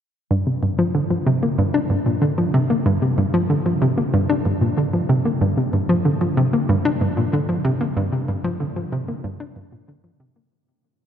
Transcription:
0.31 0.43 G2 medium
0.47 0.59 C3 medium
0.63 0.71 G2 medium
0.79 0.83 F3 loud
0.95 1.03 D3 medium
1.10 1.19 F3 medium
1.26 1.35 C3 loud
1.43 1.47 A#3 medium
1.58 1.66 G2 medium
1.74 1.79 D4 loud
1.90 1.98 G2 medium
2.06 2.14 A#2 medium
2.22 2.30 D3 medium
2.38 2.46 F3 medium
2.54 2.62 C3 loud
2.70 2.75 A#3 medium
2.86 2.98 G2 medium
3.02 3.14 C3 medium
3.18 3.26 G2 medium
3.34 3.39 F3 loud
3.50 3.58 D3 medium
3.66 3.74 F3 medium
3.82 3.90 C3 medium
3.98 4.03 A#3 medium
4.14 4.22 G2 loud
4.30 4.34 D4 medium
4.46 4.54 G2 medium
4.61 4.70 A#2 medium
4.77 4.86 D3 medium
4.93 5.02 F3 medium
5.09 5.18 C3 loud
5.25 5.30 A#3 medium
5.41 5.53 G2 medium
5.57 5.70 C3 medium
5.73 5.81 G2 medium
5.89 5.94 F3 loud
6.05 6.13 D3 medium
6.21 6.29 F3 medium
6.37 6.45 C3 loud
6.53 6.58 A#3 medium
6.69 6.77 G2 loud
6.85 6.90 D4 loud
7.01 7.09 G2 medium
7.17 7.25 A#2 medium
7.33 7.41 D3 medium
7.49 7.57 F3 medium
7.65 7.73 C3 loud
7.81 7.86 A#3 medium
7.97 8.09 G2 loud
8.13 8.25 C3 medium
8.28 8.37 G2 medium
8.44 8.49 F3 loud
8.60 8.69 D3 medium
8.76 8.85 F3 medium
8.92 9.01 C3 loud
9.08 9.13 A#3 medium
9.24 9.32 G2 loud
9.40 9.45 D4 medium
9.56 9.64 G2 medium
9.72 9.80 A#2 medium
9.88 9.96 D3 medium
10.04 10.12 F3 medium
10.20 10.28 C3 loud
10.36 10.41 A#3 medium

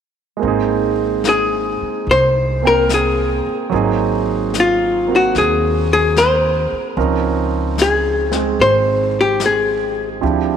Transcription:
0.37 3.69 G#3 soft
0.37 2.61 A#3 soft
0.41 1.77 G#1 medium
0.41 2.62 C4 soft
0.41 brush sweep soft
0.45 3.72 D#4 soft
0.45 3.73 G#4 soft
1.24 snare soft
1.24 hi-hat pedal soft
1.29 2.11 G#4 medium
1.81 muted upright bass stroke soft
2.07 3.42 C2 medium
2.07 brush sweep soft
2.11 2.67 C5 medium
2.62 3.69 A#3 soft
2.62 3.70 C4 soft
2.62 3.72 G5 soft
2.67 2.89 A#4 medium
2.89 snare soft
2.89 hi-hat pedal medium
2.94 3.57 G#4 medium
3.46 muted upright bass stroke soft
3.70 5.31 G#1 medium
3.70 6.96 F#3 soft
3.70 5.06 A#3 soft
3.70 5.07 C4 soft
3.70 6.97 D#4 soft
3.70 brush sweep soft
3.74 6.98 G#4 medium
4.54 snare soft
4.54 hi-hat pedal soft
4.60 5.15 F4 medium
5.08 6.97 A#3 soft
5.08 6.96 C4 soft
5.08 6.98 F#4 soft
5.16 5.38 F#4 medium
5.35 6.68 D#2 medium
5.35 5.92 G#4 medium
5.35 brush sweep soft
5.35 snare soft
5.93 6.18 G#4 medium
6.16 6.81 C5 medium
6.16 snare soft
6.16 hi-hat pedal soft
6.72 muted upright bass stroke soft
6.96 8.55 C#2 medium
6.96 10.20 F3 soft
6.96 8.30 C4 soft
6.96 10.23 C#4 soft
6.96 10.23 D#4 soft
6.96 10.23 A#4 soft
6.96 brush sweep soft
7.78 8.63 G#4 medium
7.78 snare soft
7.78 hi-hat pedal soft
8.31 10.23 G#3 soft
8.31 10.20 C4 soft
8.31 snare soft
8.59 10.18 G#1 medium
8.59 9.18 C5 medium
8.59 brush sweep soft
9.21 9.44 G4 medium
9.40 snare soft
9.40 hi-hat pedal soft
9.46 10.08 G#4 medium
10.21 10.57 D2 medium
10.21 10.57 F3 soft
10.21 10.57 C4 soft
10.21 10.57 D4 soft
10.21 10.57 E4 soft
10.21 10.57 G4 soft
10.21 brush sweep soft

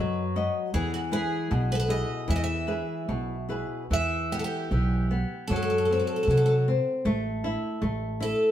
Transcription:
0.00 0.48 F#2 medium
0.00 0.73 F#3 medium
0.00 0.21 F#4 soft
0.00 0.21 B4 soft
0.00 0.33 B4 medium
0.00 0.21 D#5 soft
0.36 0.67 F#4 soft
0.36 0.67 B4 soft
0.36 0.67 D#5 medium
0.74 1.24 E2 medium
0.74 1.49 E3 medium
0.74 0.93 G#4 medium
0.94 0.99 F#4 medium
1.12 1.74 E4 soft
1.12 1.74 G#4 soft
1.12 1.72 G#4 medium
1.12 1.74 B4 soft
1.51 2.02 B1 loud
1.51 2.26 B2 medium
1.72 1.80 A4 medium
1.72 1.74 B4 medium
1.80 1.89 B4 medium
1.88 2.52 E4 soft
1.88 2.53 G#4 soft
1.88 2.53 B4 medium
1.88 2.30 D#5 medium
2.28 2.81 E2 medium
2.28 3.06 E3 medium
2.28 2.35 E5 medium
2.36 2.43 D#5 medium
2.44 3.47 E5 medium
2.67 3.33 E4 soft
2.67 3.33 G#4 soft
2.67 3.33 B4 soft
3.09 3.62 B1 medium
3.09 3.88 B2 medium
3.49 3.82 E4 soft
3.49 3.82 G#4 soft
3.49 3.83 B4 soft
3.91 4.43 E2 medium
3.91 4.70 E3 medium
3.91 4.34 E5 medium
4.32 4.70 B3 soft
4.32 4.39 G4 medium
4.39 4.44 A4 medium
4.44 5.53 G4 medium
4.71 5.22 B1 medium
4.71 5.10 E3 soft
5.11 5.49 B3 soft
5.48 6.01 F#2 medium
5.48 6.28 F#3 medium
5.48 5.55 A4 medium
5.56 5.61 A4 medium
5.63 5.69 A4 medium
5.70 5.77 A4 medium
5.78 5.84 A4 medium
5.85 5.91 A4 soft
5.91 6.28 C4 medium
5.91 5.98 A4 medium
6.00 6.06 A4 soft
6.07 6.15 A4 medium
6.16 6.22 A4 soft
6.23 6.29 A4 medium
6.27 6.78 C3 medium
6.27 6.67 F#3 medium
6.27 6.36 A4 medium
6.37 6.45 A4 medium
6.46 6.53 A4 medium
6.68 7.05 C4 medium
7.05 7.55 A1 loud
7.05 7.80 A3 medium
7.44 7.81 E4 medium
7.82 8.32 A1 medium
7.82 8.19 A3 medium
8.20 8.51 E4 medium
8.20 8.51 A4 medium

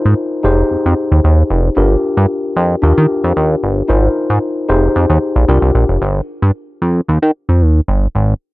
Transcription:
0.00 0.42 D#4 medium
0.00 0.44 F4 medium
0.00 0.44 A#4 medium
0.00 0.44 C5 medium
0.06 0.14 G#2 loud
0.43 0.64 F1 loud
0.43 1.74 D#4 medium
0.43 1.74 G4 medium
0.43 1.74 G#4 medium
0.43 1.75 C5 medium
0.71 0.77 F2 soft
0.86 0.94 F2 loud
1.12 1.21 D#2 medium
1.24 1.43 D#2 loud
1.50 1.70 F1 loud
1.76 1.96 G1 loud
1.76 2.81 D4 medium
1.76 2.81 F4 medium
1.76 2.81 G4 medium
1.76 2.82 A#4 medium
2.17 2.26 G2 loud
2.56 2.76 F2 loud
2.82 2.93 D#2 loud
2.82 3.87 D4 medium
2.82 3.87 F4 medium
2.82 3.87 G4 medium
2.82 3.88 A#4 medium
2.98 3.07 D#3 loud
3.24 3.33 F2 loud
3.37 3.56 D#2 loud
3.63 3.83 G1 medium
3.88 4.09 G#1 loud
3.88 4.67 D#4 medium
3.88 4.69 F4 medium
3.88 4.69 A#4 medium
3.88 4.68 C5 medium
4.30 4.39 G#2 loud
4.69 4.89 F1 loud
4.69 5.48 D#4 medium
4.69 5.48 G4 medium
4.69 5.49 G#4 medium
4.69 5.49 C5 medium
4.96 5.06 F2 loud
5.10 5.19 D#2 loud
5.36 5.45 A#1 medium
5.48 5.59 C2 loud
5.48 6.02 D4 medium
5.48 6.02 F4 medium
5.48 6.02 G4 medium
5.48 6.02 A#4 medium
5.62 5.71 C2 medium
5.75 5.85 A#1 medium
5.89 5.98 F1 medium
6.02 6.21 G1 loud
6.42 6.51 G2 medium
6.82 7.01 F2 medium
7.08 7.19 D#2 loud
7.22 7.31 D#3 loud
7.49 7.63 F2 medium
7.62 7.81 D#2 medium
7.88 8.07 G1 loud
8.15 8.34 G#1 loud

